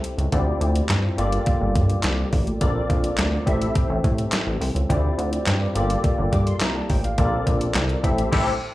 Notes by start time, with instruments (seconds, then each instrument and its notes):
Already playing: tine electric piano C4 E4 G4 A4 E5
0.04 closed hi-hat
0.18 analog synth bass C#2, closed hi-hat
0.32 analog synth bass D2, tine electric piano C4 E4 F4 G4 D5, kick, closed hi-hat
0.61 analog synth bass D2, closed hi-hat
0.75 closed hi-hat
0.89 analog synth bass G2, snare, clap, closed hi-hat
1.17 analog synth bass G1, tine electric piano A#3 F4 G4 A4 D5, closed hi-hat
1.32 closed hi-hat
1.46 kick, closed hi-hat
1.61 analog synth bass G1
1.75 analog synth bass G2, kick, closed hi-hat
1.90 closed hi-hat
2.03 analog synth bass C2, snare, clap, closed hi-hat
2.33 analog synth bass A1, kick, open hi-hat
2.47 closed hi-hat
2.61 analog synth bass A#1, tine electric piano C4 F4 A4 A#4 D5, kick, closed hi-hat
2.90 analog synth bass A#1, kick, closed hi-hat
3.04 closed hi-hat
3.18 analog synth bass D2, snare, clap, closed hi-hat
3.46 analog synth bass A1, tine electric piano C4 E4 G4 A4 E5, kick, closed hi-hat
3.62 closed hi-hat
3.75 kick, closed hi-hat
3.90 analog synth bass A1
4.04 analog synth bass A2, kick, closed hi-hat
4.18 closed hi-hat
4.32 snare, clap, closed hi-hat
4.47 analog synth bass A1
4.61 analog synth bass C2, open hi-hat
4.75 analog synth bass C#2, closed hi-hat
4.89 analog synth bass D2, tine electric piano C4 E4 F4 G4 D5, kick, closed hi-hat
5.18 analog synth bass D2, closed hi-hat
5.33 closed hi-hat
5.47 analog synth bass G2, snare, clap, closed hi-hat
5.75 analog synth bass G1, tine electric piano A#3 F4 G4 A4 D5, closed hi-hat
5.90 closed hi-hat
6.04 kick, closed hi-hat
6.18 analog synth bass G1
6.32 analog synth bass G2, tine electric piano D6, kick, closed hi-hat
6.47 tine electric piano C6, closed hi-hat
6.61 analog synth bass C2, tine electric piano A#5, snare, clap, closed hi-hat
6.76 tine electric piano A5
6.90 analog synth bass A1, tine electric piano G5, kick, open hi-hat
7.04 tine electric piano F5, closed hi-hat
7.18 analog synth bass A#1, tine electric piano C4 F4 A4 A#4 D5, kick, closed hi-hat
7.47 analog synth bass A#1, kick, closed hi-hat
7.61 closed hi-hat
7.75 analog synth bass C2, snare, clap, closed hi-hat
7.89 closed hi-hat
8.03 analog synth bass A1, tine electric piano C4 E4 G4 A4 E5, kick, closed hi-hat
8.18 closed hi-hat
8.31 analog synth bass A1, tine electric piano C4 E4 G4 A4 E5, kick, snare, crash